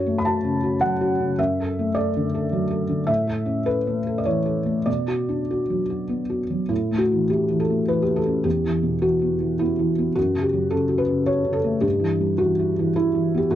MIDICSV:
0, 0, Header, 1, 2, 480
1, 0, Start_track
1, 0, Tempo, 570342
1, 1162, Time_signature, 3, 2, 24, 8
1, 3086, Tempo, 607287
1, 5486, Tempo, 583090
1, 7406, Tempo, 562324
1, 11262, End_track
2, 0, Start_track
2, 0, Title_t, "Felt piano"
2, 0, Program_c, 0, 0
2, 0, Control_c, 0, 64, 127
2, 0, Note_on_c, 0, 42, 48
2, 0, Note_on_c, 0, 66, 39
2, 0, Note_on_c, 0, 73, 70
2, 53, Note_on_c, 0, 57, 37
2, 144, Note_off_c, 0, 66, 0
2, 145, Note_off_c, 0, 73, 0
2, 154, Note_on_c, 0, 83, 54
2, 209, Note_off_c, 0, 83, 0
2, 210, Note_on_c, 0, 81, 68
2, 226, Note_on_c, 0, 66, 40
2, 306, Note_off_c, 0, 57, 0
2, 372, Note_on_c, 0, 49, 35
2, 471, Note_off_c, 0, 66, 0
2, 529, Note_on_c, 0, 66, 38
2, 622, Note_off_c, 0, 49, 0
2, 678, Note_on_c, 0, 78, 77
2, 684, Note_off_c, 0, 81, 0
2, 685, Note_on_c, 0, 54, 40
2, 779, Note_off_c, 0, 66, 0
2, 848, Note_on_c, 0, 66, 40
2, 938, Note_off_c, 0, 54, 0
2, 1012, Note_on_c, 0, 49, 38
2, 1101, Note_off_c, 0, 66, 0
2, 1130, Note_off_c, 0, 42, 0
2, 1160, Note_off_c, 0, 78, 0
2, 1167, Note_on_c, 0, 76, 71
2, 1168, Note_off_c, 0, 49, 0
2, 1169, Note_on_c, 0, 42, 50
2, 1179, Control_c, 0, 64, 0
2, 1342, Control_c, 0, 64, 127
2, 1346, Note_on_c, 0, 69, 41
2, 1507, Note_on_c, 0, 57, 38
2, 1589, Note_off_c, 0, 69, 0
2, 1637, Note_on_c, 0, 74, 69
2, 1644, Note_off_c, 0, 76, 0
2, 1653, Note_on_c, 0, 69, 43
2, 1747, Note_off_c, 0, 57, 0
2, 1822, Note_on_c, 0, 50, 38
2, 1899, Note_off_c, 0, 69, 0
2, 1974, Note_on_c, 0, 69, 41
2, 2064, Note_off_c, 0, 50, 0
2, 2126, Note_on_c, 0, 54, 41
2, 2220, Note_off_c, 0, 69, 0
2, 2278, Note_on_c, 0, 69, 42
2, 2377, Note_off_c, 0, 54, 0
2, 2438, Note_on_c, 0, 50, 38
2, 2534, Note_off_c, 0, 69, 0
2, 2568, Note_off_c, 0, 42, 0
2, 2583, Note_on_c, 0, 76, 77
2, 2592, Note_on_c, 0, 45, 51
2, 2596, Note_off_c, 0, 74, 0
2, 2599, Note_off_c, 0, 50, 0
2, 2612, Control_c, 0, 64, 0
2, 2755, Note_on_c, 0, 69, 43
2, 2757, Control_c, 0, 64, 127
2, 2910, Note_on_c, 0, 61, 37
2, 3018, Note_off_c, 0, 69, 0
2, 3078, Note_off_c, 0, 76, 0
2, 3079, Note_on_c, 0, 71, 69
2, 3087, Note_on_c, 0, 69, 39
2, 3173, Note_off_c, 0, 61, 0
2, 3245, Note_on_c, 0, 57, 34
2, 3336, Note_off_c, 0, 69, 0
2, 3403, Note_on_c, 0, 69, 38
2, 3494, Note_on_c, 0, 74, 46
2, 3495, Note_off_c, 0, 57, 0
2, 3496, Note_off_c, 0, 71, 0
2, 3552, Note_on_c, 0, 73, 62
2, 3554, Note_off_c, 0, 74, 0
2, 3559, Note_on_c, 0, 52, 39
2, 3655, Note_off_c, 0, 69, 0
2, 3712, Note_on_c, 0, 69, 35
2, 3813, Note_off_c, 0, 52, 0
2, 3871, Note_on_c, 0, 57, 35
2, 3971, Note_off_c, 0, 69, 0
2, 4003, Note_off_c, 0, 45, 0
2, 4027, Note_on_c, 0, 74, 63
2, 4031, Note_on_c, 0, 47, 45
2, 4036, Note_off_c, 0, 57, 0
2, 4036, Note_off_c, 0, 73, 0
2, 4054, Control_c, 0, 64, 0
2, 4181, Control_c, 0, 64, 127
2, 4202, Note_on_c, 0, 66, 37
2, 4368, Note_on_c, 0, 62, 33
2, 4460, Note_off_c, 0, 66, 0
2, 4541, Note_on_c, 0, 66, 36
2, 4624, Note_off_c, 0, 62, 0
2, 4694, Note_on_c, 0, 54, 32
2, 4790, Note_off_c, 0, 66, 0
2, 4851, Note_on_c, 0, 66, 34
2, 4946, Note_off_c, 0, 54, 0
2, 5003, Note_on_c, 0, 59, 34
2, 5104, Note_off_c, 0, 66, 0
2, 5163, Note_on_c, 0, 66, 34
2, 5241, Note_off_c, 0, 74, 0
2, 5262, Note_off_c, 0, 59, 0
2, 5327, Note_on_c, 0, 54, 32
2, 5422, Note_off_c, 0, 66, 0
2, 5451, Note_off_c, 0, 47, 0
2, 5474, Note_on_c, 0, 64, 61
2, 5480, Note_on_c, 0, 45, 42
2, 5486, Note_off_c, 0, 54, 0
2, 5501, Control_c, 0, 64, 0
2, 5655, Control_c, 0, 64, 127
2, 5658, Note_on_c, 0, 57, 35
2, 5716, Note_on_c, 0, 66, 56
2, 5725, Note_off_c, 0, 64, 0
2, 5827, Note_on_c, 0, 52, 32
2, 5915, Note_off_c, 0, 57, 0
2, 5968, Note_off_c, 0, 66, 0
2, 5974, Note_on_c, 0, 57, 33
2, 5974, Note_on_c, 0, 67, 56
2, 6079, Note_off_c, 0, 52, 0
2, 6143, Note_on_c, 0, 52, 33
2, 6213, Note_off_c, 0, 67, 0
2, 6220, Note_on_c, 0, 69, 62
2, 6229, Note_off_c, 0, 57, 0
2, 6306, Note_on_c, 0, 57, 33
2, 6391, Note_off_c, 0, 52, 0
2, 6453, Note_off_c, 0, 69, 0
2, 6456, Note_on_c, 0, 71, 67
2, 6463, Note_on_c, 0, 52, 37
2, 6551, Note_off_c, 0, 57, 0
2, 6571, Note_off_c, 0, 71, 0
2, 6571, Note_on_c, 0, 67, 57
2, 6621, Note_on_c, 0, 57, 33
2, 6686, Note_on_c, 0, 69, 64
2, 6689, Note_off_c, 0, 67, 0
2, 6710, Note_off_c, 0, 52, 0
2, 6768, Note_on_c, 0, 61, 35
2, 6870, Note_off_c, 0, 57, 0
2, 6891, Note_off_c, 0, 45, 0
2, 6914, Note_on_c, 0, 67, 66
2, 6920, Note_on_c, 0, 40, 47
2, 6926, Note_off_c, 0, 69, 0
2, 6928, Note_off_c, 0, 61, 0
2, 6943, Control_c, 0, 64, 0
2, 7078, Control_c, 0, 64, 127
2, 7081, Note_on_c, 0, 52, 35
2, 7234, Note_on_c, 0, 47, 33
2, 7339, Note_off_c, 0, 52, 0
2, 7391, Note_on_c, 0, 66, 63
2, 7395, Note_on_c, 0, 52, 33
2, 7399, Note_off_c, 0, 67, 0
2, 7498, Note_off_c, 0, 47, 0
2, 7560, Note_on_c, 0, 59, 35
2, 7662, Note_off_c, 0, 52, 0
2, 7718, Note_on_c, 0, 52, 35
2, 7824, Note_off_c, 0, 59, 0
2, 7881, Note_on_c, 0, 64, 63
2, 7886, Note_off_c, 0, 66, 0
2, 7890, Note_on_c, 0, 59, 40
2, 7982, Note_off_c, 0, 52, 0
2, 8050, Note_on_c, 0, 52, 36
2, 8146, Note_off_c, 0, 59, 0
2, 8215, Note_on_c, 0, 59, 39
2, 8304, Note_off_c, 0, 52, 0
2, 8331, Note_off_c, 0, 40, 0
2, 8361, Note_on_c, 0, 66, 67
2, 8363, Note_off_c, 0, 64, 0
2, 8371, Note_off_c, 0, 59, 0
2, 8372, Note_on_c, 0, 42, 46
2, 8385, Control_c, 0, 64, 0
2, 8517, Control_c, 0, 64, 127
2, 8531, Note_on_c, 0, 49, 35
2, 8586, Note_on_c, 0, 67, 58
2, 8605, Note_off_c, 0, 66, 0
2, 8684, Note_on_c, 0, 54, 35
2, 8787, Note_off_c, 0, 49, 0
2, 8833, Note_on_c, 0, 69, 65
2, 8838, Note_off_c, 0, 67, 0
2, 8843, Note_on_c, 0, 49, 35
2, 8942, Note_off_c, 0, 54, 0
2, 8989, Note_on_c, 0, 66, 36
2, 9066, Note_on_c, 0, 71, 63
2, 9079, Note_off_c, 0, 69, 0
2, 9101, Note_off_c, 0, 49, 0
2, 9151, Note_on_c, 0, 49, 36
2, 9252, Note_off_c, 0, 66, 0
2, 9307, Note_on_c, 0, 73, 70
2, 9312, Note_on_c, 0, 66, 39
2, 9315, Note_off_c, 0, 71, 0
2, 9414, Note_off_c, 0, 49, 0
2, 9462, Note_on_c, 0, 49, 41
2, 9532, Note_on_c, 0, 69, 68
2, 9557, Note_off_c, 0, 73, 0
2, 9576, Note_off_c, 0, 66, 0
2, 9629, Note_on_c, 0, 57, 39
2, 9731, Note_off_c, 0, 49, 0
2, 9774, Note_off_c, 0, 42, 0
2, 9774, Note_on_c, 0, 67, 72
2, 9780, Note_on_c, 0, 43, 50
2, 9789, Note_off_c, 0, 69, 0
2, 9798, Note_off_c, 0, 57, 0
2, 9820, Control_c, 0, 64, 0
2, 9934, Note_on_c, 0, 52, 40
2, 9960, Control_c, 0, 64, 127
2, 10112, Note_on_c, 0, 55, 38
2, 10205, Note_off_c, 0, 52, 0
2, 10262, Note_on_c, 0, 66, 69
2, 10269, Note_off_c, 0, 67, 0
2, 10274, Note_on_c, 0, 52, 40
2, 10375, Note_off_c, 0, 55, 0
2, 10442, Note_on_c, 0, 64, 38
2, 10536, Note_off_c, 0, 52, 0
2, 10611, Note_on_c, 0, 52, 40
2, 10700, Note_off_c, 0, 64, 0
2, 10754, Note_off_c, 0, 66, 0
2, 10755, Note_on_c, 0, 64, 75
2, 10864, Note_off_c, 0, 52, 0
2, 10916, Note_on_c, 0, 52, 42
2, 11084, Note_on_c, 0, 59, 42
2, 11110, Note_on_c, 0, 67, 73
2, 11120, Note_off_c, 0, 64, 0
2, 11177, Note_off_c, 0, 52, 0
2, 11198, Note_off_c, 0, 43, 0
2, 11223, Note_on_c, 0, 66, 78
2, 11231, Note_on_c, 0, 45, 54
2, 11238, Note_off_c, 0, 67, 0
2, 11244, Note_off_c, 0, 59, 0
2, 11260, Control_c, 0, 64, 0
2, 11262, Note_off_c, 0, 45, 0
2, 11262, Note_off_c, 0, 66, 0
2, 11262, End_track
0, 0, End_of_file